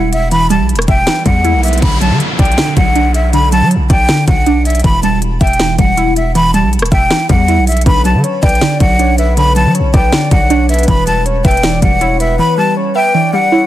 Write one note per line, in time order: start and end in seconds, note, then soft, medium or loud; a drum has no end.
0.00 0.61 E1 loud
0.00 0.30 E3 medium
0.00 0.49 G3 medium
0.00 0.88 E4 medium
0.00 0.31 E5 medium
0.00 0.10 F#5 medium
0.13 0.29 E5 medium
0.13 closed hi-hat medium
0.31 1.06 E3 medium
0.31 0.47 B5 loud
0.31 closed hi-hat medium
0.31 riser medium
0.50 1.24 G3 medium
0.50 0.66 A5 medium
0.50 closed hi-hat medium
0.60 0.75 B1 loud
0.69 closed hi-hat soft
0.74 0.87 E1 loud
0.74 closed hi-hat medium
0.79 cross-stick loud
0.79 closed hi-hat medium
0.88 1.06 E1 loud
0.88 1.82 E5 medium
0.88 1.23 G5 medium
0.88 kick medium
0.88 closed hi-hat medium
1.07 1.82 E3 medium
1.07 snare loud
1.07 closed hi-hat medium
1.26 1.55 E2 loud
1.26 1.82 G3 medium
1.26 1.61 F#5 medium
1.26 kick loud
1.26 closed hi-hat medium
1.45 1.82 E4 medium
1.45 closed hi-hat medium
1.54 1.81 B1 loud
1.63 1.79 E5 medium
1.63 closed hi-hat medium
1.63 open hi-hat medium
1.68 closed hi-hat medium
1.73 closed hi-hat medium
1.78 closed hi-hat medium
1.82 2.12 B1 loud
1.82 2.57 D3 loud
1.82 1.98 B5 loud
1.82 kick loud
1.82 closed hi-hat medium
1.82 crash loud
1.82 downlifter medium
2.01 2.75 F#3 medium
2.01 2.17 A5 medium
2.01 closed hi-hat medium
2.11 2.20 D3 loud
2.20 closed hi-hat medium
2.39 2.57 B1 loud
2.39 3.33 D5 loud
2.39 2.74 G5 medium
2.39 kick loud
2.39 closed hi-hat medium
2.45 closed hi-hat medium
2.52 closed hi-hat medium
2.58 3.32 D3 medium
2.58 snare loud
2.58 closed hi-hat medium
2.77 3.63 B1 loud
2.77 3.51 F#3 medium
2.77 3.12 F#5 medium
2.77 kick loud
2.77 closed hi-hat medium
2.95 3.90 D4 loud
2.95 closed hi-hat medium
3.14 3.30 E5 medium
3.14 closed hi-hat medium
3.33 4.08 D3 medium
3.33 3.49 B5 loud
3.33 closed hi-hat medium
3.52 4.26 F#3 medium
3.52 3.68 A5 medium
3.52 closed hi-hat medium
3.62 3.77 F#3 loud
3.71 closed hi-hat medium
3.76 3.89 B1 loud
3.90 4.08 B1 loud
3.90 4.84 D5 medium
3.90 4.25 G5 medium
3.90 kick medium
3.90 closed hi-hat medium
4.09 4.84 D3 medium
4.09 snare loud
4.09 closed hi-hat medium
4.27 4.82 B1 loud
4.27 4.84 F#3 medium
4.27 4.63 F#5 medium
4.27 kick loud
4.27 closed hi-hat medium
4.46 4.84 D4 loud
4.46 closed hi-hat medium
4.65 4.81 E5 medium
4.65 closed hi-hat medium
4.70 closed hi-hat medium
4.75 closed hi-hat medium
4.79 closed hi-hat medium
4.84 5.39 E1 loud
4.84 5.59 E3 loud
4.84 5.00 B5 medium
4.84 kick loud
4.84 closed hi-hat medium
5.03 5.77 G3 medium
5.03 5.19 A5 medium
5.03 closed hi-hat medium
5.22 closed hi-hat medium
5.41 5.77 E1 loud
5.41 6.35 E5 medium
5.41 5.76 G5 medium
5.41 kick medium
5.41 closed hi-hat medium
5.47 closed hi-hat medium
5.53 closed hi-hat medium
5.59 6.34 E3 medium
5.59 snare loud
5.59 closed hi-hat medium
5.78 6.65 E1 loud
5.78 6.53 G3 medium
5.78 6.14 F#5 medium
5.78 kick loud
5.78 closed hi-hat medium
5.97 6.92 E4 medium
5.97 closed hi-hat medium
6.16 6.32 E5 medium
6.16 closed hi-hat medium
6.35 7.09 E3 medium
6.35 6.51 B5 loud
6.35 closed hi-hat medium
6.54 7.28 G3 medium
6.54 6.70 A5 medium
6.54 closed hi-hat medium
6.63 6.79 B1 loud
6.73 closed hi-hat soft
6.78 6.91 E1 loud
6.78 closed hi-hat medium
6.82 cross-stick loud
6.82 closed hi-hat medium
6.92 7.10 E1 loud
6.92 7.86 E5 medium
6.92 7.27 G5 medium
6.92 kick loud
6.92 closed hi-hat medium
7.11 7.86 E3 medium
7.11 snare loud
7.11 closed hi-hat medium
7.29 7.59 E2 loud
7.29 7.86 G3 medium
7.29 7.65 F#5 medium
7.29 kick loud
7.29 closed hi-hat medium
7.48 7.86 E4 medium
7.48 closed hi-hat medium
7.58 7.85 B1 loud
7.67 7.83 E5 medium
7.67 closed hi-hat medium
7.67 open hi-hat medium
7.72 closed hi-hat medium
7.77 closed hi-hat medium
7.81 closed hi-hat medium
7.86 8.16 B1 loud
7.86 8.60 D3 loud
7.86 8.22 B4 loud
7.86 8.02 B5 loud
7.86 kick loud
7.86 closed hi-hat medium
8.05 8.79 F#3 medium
8.05 8.21 A5 medium
8.05 closed hi-hat medium
8.14 8.23 D3 loud
8.24 8.42 C#5 medium
8.24 closed hi-hat medium
8.42 8.61 B1 loud
8.42 8.60 B4 medium
8.42 9.37 D5 medium
8.42 8.78 G5 medium
8.42 kick loud
8.42 closed hi-hat medium
8.49 closed hi-hat medium
8.55 closed hi-hat medium
8.61 9.36 D3 medium
8.61 8.97 D5 medium
8.61 snare loud
8.61 closed hi-hat medium
8.80 9.67 B1 loud
8.80 9.55 F#3 medium
8.80 9.16 F#5 medium
8.80 kick loud
8.80 closed hi-hat medium
8.99 9.94 D4 medium
8.99 9.17 C#5 medium
8.99 closed hi-hat medium
9.18 9.36 B4 medium
9.18 9.34 E5 medium
9.18 closed hi-hat medium
9.37 10.11 D3 medium
9.37 9.73 B4 loud
9.37 9.53 B5 loud
9.37 closed hi-hat medium
9.56 10.30 F#3 medium
9.56 9.72 A5 medium
9.56 closed hi-hat medium
9.65 9.81 F#3 loud
9.75 9.93 C#5 medium
9.75 closed hi-hat medium
9.79 9.93 B1 loud
9.94 10.12 B1 loud
9.94 10.12 B4 medium
9.94 10.88 D5 medium
9.94 10.29 G5 medium
9.94 kick medium
9.94 closed hi-hat medium
10.12 10.88 D3 medium
10.12 10.48 D5 medium
10.12 snare loud
10.12 closed hi-hat medium
10.31 10.86 B1 loud
10.31 10.88 F#3 medium
10.31 10.67 F#5 medium
10.31 kick loud
10.31 closed hi-hat medium
10.50 10.88 D4 loud
10.50 10.68 C#5 medium
10.50 closed hi-hat medium
10.69 10.87 B4 medium
10.69 10.85 E5 medium
10.69 closed hi-hat medium
10.74 closed hi-hat medium
10.79 closed hi-hat medium
10.83 closed hi-hat medium
10.88 11.42 E1 loud
10.88 11.62 E3 loud
10.88 11.24 B4 loud
10.88 11.04 B5 loud
10.88 kick loud
10.88 closed hi-hat medium
11.07 11.81 G3 medium
11.07 11.23 A5 medium
11.07 closed hi-hat medium
11.26 11.44 C#5 medium
11.26 closed hi-hat medium
11.44 11.81 E1 loud
11.44 11.62 B4 medium
11.44 12.39 E5 medium
11.44 11.80 G5 medium
11.44 kick medium
11.44 closed hi-hat medium
11.51 closed hi-hat medium
11.57 closed hi-hat medium
11.63 12.38 E3 medium
11.63 11.99 D5 medium
11.63 snare loud
11.63 closed hi-hat medium
11.82 12.39 E1 loud
11.82 12.56 G3 medium
11.82 12.18 F#5 medium
11.82 kick loud
11.82 closed hi-hat medium
12.01 12.96 E4 medium
12.01 12.19 C#5 medium
12.01 closed hi-hat medium
12.20 12.38 B4 medium
12.20 12.36 E5 medium
12.20 closed hi-hat medium
12.39 13.13 E3 medium
12.39 12.74 B4 loud
12.39 12.55 B5 loud
12.58 13.32 G3 medium
12.58 12.74 A5 medium
12.77 12.95 C#5 medium
12.95 13.13 B4 medium
12.95 13.67 E5 medium
12.95 13.31 G5 medium
13.14 13.67 E3 medium
13.14 13.50 D5 medium
13.33 13.67 G3 medium
13.33 13.67 F#5 medium
13.52 13.67 E4 medium
13.52 13.67 C#5 medium